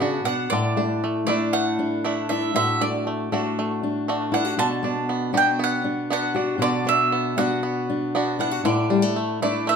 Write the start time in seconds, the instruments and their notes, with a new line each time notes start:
Already playing: five-string banjo D3, steel-string acoustic guitar B3 D4 F#4
0.00 steel-string acoustic guitar C#3, five-string banjo B3 D4 F#4
0.24 steel-string acoustic guitar B2, five-string banjo D4, mandolin F#5
0.50 steel-string acoustic guitar A2 E4, five-string banjo D3, mandolin D5
0.77 steel-string acoustic guitar A3, five-string banjo D4
1.04 five-string banjo A3
1.27 steel-string acoustic guitar A3 D4 E4, five-string banjo A3 D4 E4, mandolin D5
1.53 five-string banjo A3, mandolin F#5
1.79 steel-string acoustic guitar D4
2.04 five-string banjo A3 D4 E4
2.29 five-string banjo D4, steel-string acoustic guitar E4, mandolin E5
2.54 steel-string acoustic guitar A2 F#4, five-string banjo D3, mandolin E5
2.81 steel-string acoustic guitar A3, five-string banjo D4, mandolin D5
3.07 five-string banjo A3
3.32 steel-string acoustic guitar A3 D4 F#4, five-string banjo A3 D4 F#4
3.59 five-string banjo A3
3.83 steel-string acoustic guitar D4
4.08 five-string banjo A3 D4 F#4
4.32 five-string banjo D4, steel-string acoustic guitar E4, mandolin F#5
4.45 steel-string acoustic guitar F#4
4.57 steel-string acoustic guitar B2 F#4, five-string banjo D3, mandolin A5
4.83 steel-string acoustic guitar B3, five-string banjo D4
5.09 five-string banjo B3
5.33 steel-string acoustic guitar B3 D4 F#4, five-string banjo B3 D4 F#4
5.37 mandolin G5
5.59 five-string banjo B3
5.64 mandolin F#5
5.84 steel-string acoustic guitar D4
6.10 five-string banjo B3 D4 F#4, mandolin F#5
6.34 five-string banjo D4, steel-string acoustic guitar F#4
6.58 steel-string acoustic guitar B2 F#4, five-string banjo D3
6.62 mandolin D5
6.85 steel-string acoustic guitar B3, five-string banjo D4, mandolin E5
7.12 five-string banjo B3
7.37 steel-string acoustic guitar B3 D4 F#4, five-string banjo B3 D4 F#4, mandolin F#5
7.63 five-string banjo B3
7.89 steel-string acoustic guitar D4
8.15 five-string banjo B3 D4 F#4
8.39 five-string banjo D4, steel-string acoustic guitar E4, mandolin F#5
8.51 steel-string acoustic guitar F#4
8.64 steel-string acoustic guitar A2 E4, five-string banjo D3, mandolin D5
8.90 steel-string acoustic guitar G3, five-string banjo D4
9.02 steel-string acoustic guitar A3
9.16 five-string banjo A3
9.42 five-string banjo A3 D4 E4, steel-string acoustic guitar A3 D4 E4, mandolin D5
9.67 five-string banjo A3, mandolin E5